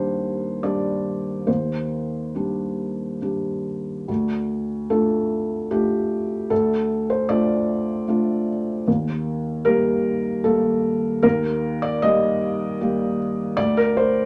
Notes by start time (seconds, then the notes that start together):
Already playing: D#2 G3 D4 G4 C5
0.63 G3 D4 G4 D5
1.47 D#2 C5
2.35 G3 D4 G4
3.22 G3 D4 G4
4.08 D2
4.90 A3 D4 F4 A4
5.71 A3 D4 F4 G4
6.50 D2 A4
7.10 C5
7.29 A3 D4 F4 D5
8.08 A3 D4 F4
8.88 D#2
9.65 G3 A#3 G4 A#4
10.44 G3 A#3 G4 A4
11.23 D#2 A#4
11.82 D5
12.02 G3 A#3 G4 D#5
12.81 G3 A#3 G4
13.57 D2 D5
13.77 A#4
13.97 C5